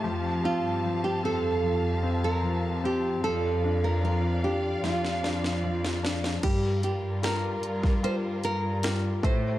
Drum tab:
CC |----------------|----------------|x---------------|
HH |----------------|----------------|x-x-x-x-x-x-x-x-|
SD |----------------|--------oooo-ooo|----o--o----o---|
BD |----------------|----------------|o------o------o-|